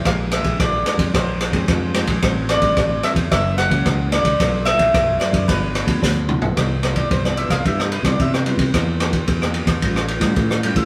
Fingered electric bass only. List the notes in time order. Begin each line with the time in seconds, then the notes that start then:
0.05 A#1
0.43 A#1
0.60 A#1
0.98 F2
1.14 A#1
1.52 F2
1.68 F2
2.06 A#1
2.23 A1
2.60 A1
2.77 A1
3.15 E2
3.32 F#1
3.69 C#2
3.86 C#2
4.23 C#2
4.40 B1
4.77 B1
4.94 B1
5.32 F#2
5.49 G1
5.86 D2
6.03 D2
6.42 B1
6.57 C2
7.11 C2
7.49 C2
7.65 G2
8.03 C3
8.19 C3
8.57 C3
8.74 E2
9.28 E2
9.66 E2
9.82 A1
10.20 A2
10.36 A2
10.75 A2